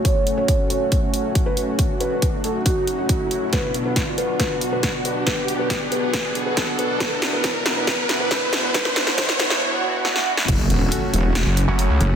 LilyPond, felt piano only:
\new Staff \with { instrumentName = "Felt piano" } { \time 4/4 \key fis \minor \tempo 4 = 138 cis''8 r16 cis''8 r16 cis''8 r4 r16 b'16 r8 | r8 b'8 r8 a'16 r16 fis'8 r16 fis'4 r16 | b'8 r16 b'8 r16 b'8 b'8 r16 b'8 r16 b'8 | b'8 r16 b'8 r16 b'8 b'8 r16 b'8 r16 b'8 |
b'8 r16 b'16 b'8 r16 b'16 b'8 r16 b'16 b'8 r16 b'16 | b'8 b'8 b'8 b'8 r2 | r1 | }